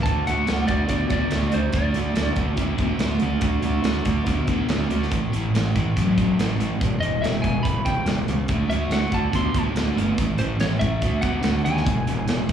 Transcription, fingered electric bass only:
0, 0, Header, 1, 2, 480
1, 0, Start_track
1, 0, Tempo, 421941
1, 61, Time_signature, 4, 2, 24, 8
1, 14247, End_track
2, 0, Start_track
2, 0, Title_t, "Fingered electric bass"
2, 0, Program_c, 0, 33
2, 61, Note_on_c, 0, 38, 85
2, 235, Note_off_c, 0, 38, 0
2, 320, Note_on_c, 0, 38, 81
2, 487, Note_off_c, 0, 38, 0
2, 565, Note_on_c, 0, 38, 76
2, 731, Note_off_c, 0, 38, 0
2, 775, Note_on_c, 0, 38, 74
2, 951, Note_off_c, 0, 38, 0
2, 1011, Note_on_c, 0, 38, 81
2, 1189, Note_off_c, 0, 38, 0
2, 1255, Note_on_c, 0, 38, 78
2, 1432, Note_off_c, 0, 38, 0
2, 1499, Note_on_c, 0, 38, 85
2, 1675, Note_off_c, 0, 38, 0
2, 1756, Note_on_c, 0, 38, 79
2, 1926, Note_off_c, 0, 38, 0
2, 1967, Note_on_c, 0, 38, 82
2, 2147, Note_off_c, 0, 38, 0
2, 2231, Note_on_c, 0, 38, 81
2, 2402, Note_off_c, 0, 38, 0
2, 2455, Note_on_c, 0, 38, 80
2, 2632, Note_off_c, 0, 38, 0
2, 2689, Note_on_c, 0, 38, 82
2, 2868, Note_off_c, 0, 38, 0
2, 2924, Note_on_c, 0, 38, 86
2, 3105, Note_off_c, 0, 38, 0
2, 3170, Note_on_c, 0, 38, 80
2, 3349, Note_off_c, 0, 38, 0
2, 3408, Note_on_c, 0, 38, 85
2, 3587, Note_off_c, 0, 38, 0
2, 3664, Note_on_c, 0, 38, 83
2, 3838, Note_off_c, 0, 38, 0
2, 3889, Note_on_c, 0, 38, 88
2, 4068, Note_off_c, 0, 38, 0
2, 4136, Note_on_c, 0, 38, 87
2, 4312, Note_off_c, 0, 38, 0
2, 4373, Note_on_c, 0, 38, 82
2, 4551, Note_off_c, 0, 38, 0
2, 4614, Note_on_c, 0, 38, 80
2, 4791, Note_off_c, 0, 38, 0
2, 4856, Note_on_c, 0, 38, 86
2, 5033, Note_off_c, 0, 38, 0
2, 5096, Note_on_c, 0, 38, 78
2, 5272, Note_off_c, 0, 38, 0
2, 5330, Note_on_c, 0, 38, 82
2, 5509, Note_off_c, 0, 38, 0
2, 5569, Note_on_c, 0, 38, 83
2, 5748, Note_off_c, 0, 38, 0
2, 5826, Note_on_c, 0, 33, 87
2, 5999, Note_off_c, 0, 33, 0
2, 6067, Note_on_c, 0, 33, 83
2, 6239, Note_off_c, 0, 33, 0
2, 6309, Note_on_c, 0, 33, 77
2, 6480, Note_off_c, 0, 33, 0
2, 6549, Note_on_c, 0, 33, 76
2, 6721, Note_off_c, 0, 33, 0
2, 6789, Note_on_c, 0, 33, 89
2, 6961, Note_off_c, 0, 33, 0
2, 7025, Note_on_c, 0, 33, 83
2, 7198, Note_off_c, 0, 33, 0
2, 7253, Note_on_c, 0, 33, 77
2, 7430, Note_off_c, 0, 33, 0
2, 7489, Note_on_c, 0, 33, 77
2, 7667, Note_off_c, 0, 33, 0
2, 7749, Note_on_c, 0, 28, 84
2, 7921, Note_off_c, 0, 28, 0
2, 7962, Note_on_c, 0, 28, 80
2, 8143, Note_off_c, 0, 28, 0
2, 8208, Note_on_c, 0, 28, 80
2, 8387, Note_off_c, 0, 28, 0
2, 8459, Note_on_c, 0, 28, 81
2, 8634, Note_off_c, 0, 28, 0
2, 8704, Note_on_c, 0, 28, 82
2, 8877, Note_off_c, 0, 28, 0
2, 8939, Note_on_c, 0, 28, 79
2, 9114, Note_off_c, 0, 28, 0
2, 9168, Note_on_c, 0, 28, 84
2, 9347, Note_off_c, 0, 28, 0
2, 9419, Note_on_c, 0, 37, 78
2, 9593, Note_off_c, 0, 37, 0
2, 9657, Note_on_c, 0, 38, 89
2, 9832, Note_off_c, 0, 38, 0
2, 9879, Note_on_c, 0, 38, 86
2, 10061, Note_off_c, 0, 38, 0
2, 10128, Note_on_c, 0, 38, 83
2, 10306, Note_off_c, 0, 38, 0
2, 10380, Note_on_c, 0, 38, 77
2, 10554, Note_off_c, 0, 38, 0
2, 10621, Note_on_c, 0, 38, 86
2, 10795, Note_off_c, 0, 38, 0
2, 10857, Note_on_c, 0, 38, 82
2, 11032, Note_off_c, 0, 38, 0
2, 11089, Note_on_c, 0, 38, 89
2, 11267, Note_off_c, 0, 38, 0
2, 11336, Note_on_c, 0, 31, 82
2, 11511, Note_off_c, 0, 31, 0
2, 11575, Note_on_c, 0, 33, 85
2, 11750, Note_off_c, 0, 33, 0
2, 11818, Note_on_c, 0, 33, 83
2, 11992, Note_off_c, 0, 33, 0
2, 12070, Note_on_c, 0, 33, 81
2, 12239, Note_off_c, 0, 33, 0
2, 12297, Note_on_c, 0, 33, 78
2, 12471, Note_off_c, 0, 33, 0
2, 12537, Note_on_c, 0, 38, 87
2, 12711, Note_off_c, 0, 38, 0
2, 12771, Note_on_c, 0, 38, 81
2, 12947, Note_off_c, 0, 38, 0
2, 13016, Note_on_c, 0, 38, 84
2, 13190, Note_off_c, 0, 38, 0
2, 13269, Note_on_c, 0, 39, 78
2, 13438, Note_off_c, 0, 39, 0
2, 13497, Note_on_c, 0, 28, 84
2, 13670, Note_off_c, 0, 28, 0
2, 13740, Note_on_c, 0, 28, 78
2, 13913, Note_off_c, 0, 28, 0
2, 13980, Note_on_c, 0, 28, 78
2, 14152, Note_off_c, 0, 28, 0
2, 14204, Note_on_c, 0, 28, 75
2, 14247, Note_off_c, 0, 28, 0
2, 14247, End_track
0, 0, End_of_file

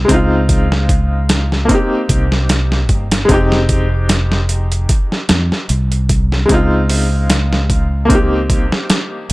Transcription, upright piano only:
0, 0, Header, 1, 2, 480
1, 0, Start_track
1, 0, Key_signature, -4, "minor"
1, 0, Tempo, 800000
1, 59, Time_signature, 4, 2, 24, 8
1, 5596, End_track
2, 0, Start_track
2, 0, Title_t, "Upright piano"
2, 0, Program_c, 0, 0
2, 0, Control_c, 0, 64, 127
2, 29, Note_on_c, 0, 56, 72
2, 49, Note_on_c, 0, 60, 70
2, 67, Control_c, 0, 64, 0
2, 67, Note_on_c, 0, 63, 67
2, 85, Note_on_c, 0, 65, 84
2, 165, Control_c, 0, 64, 127
2, 961, Note_off_c, 0, 56, 0
2, 971, Note_off_c, 0, 60, 0
2, 980, Note_off_c, 0, 63, 0
2, 989, Note_off_c, 0, 65, 0
2, 991, Note_on_c, 0, 58, 71
2, 1010, Note_on_c, 0, 60, 68
2, 1026, Note_on_c, 0, 63, 68
2, 1027, Control_c, 0, 64, 0
2, 1047, Note_on_c, 0, 67, 78
2, 1139, Control_c, 0, 64, 127
2, 1922, Note_off_c, 0, 58, 0
2, 1932, Note_off_c, 0, 60, 0
2, 1940, Note_off_c, 0, 63, 0
2, 1950, Note_off_c, 0, 67, 0
2, 1950, Note_on_c, 0, 56, 79
2, 1969, Note_on_c, 0, 60, 74
2, 1987, Control_c, 0, 64, 0
2, 1987, Note_on_c, 0, 63, 77
2, 2003, Note_on_c, 0, 67, 93
2, 2091, Control_c, 0, 64, 127
2, 3842, Note_off_c, 0, 56, 0
2, 3851, Note_off_c, 0, 60, 0
2, 3860, Note_off_c, 0, 63, 0
2, 3868, Note_off_c, 0, 67, 0
2, 3873, Note_on_c, 0, 56, 72
2, 3890, Note_on_c, 0, 60, 64
2, 3907, Control_c, 0, 64, 0
2, 3908, Note_on_c, 0, 63, 66
2, 3925, Note_on_c, 0, 65, 84
2, 4008, Control_c, 0, 64, 127
2, 4803, Note_off_c, 0, 56, 0
2, 4812, Note_off_c, 0, 60, 0
2, 4821, Note_off_c, 0, 63, 0
2, 4829, Note_off_c, 0, 65, 0
2, 4832, Note_on_c, 0, 58, 76
2, 4852, Note_on_c, 0, 60, 67
2, 4866, Control_c, 0, 64, 0
2, 4869, Note_on_c, 0, 63, 63
2, 4889, Note_on_c, 0, 67, 80
2, 4984, Control_c, 0, 64, 127
2, 5596, Note_off_c, 0, 58, 0
2, 5596, Note_off_c, 0, 60, 0
2, 5596, Note_off_c, 0, 63, 0
2, 5596, Note_off_c, 0, 67, 0
2, 5596, End_track
0, 0, End_of_file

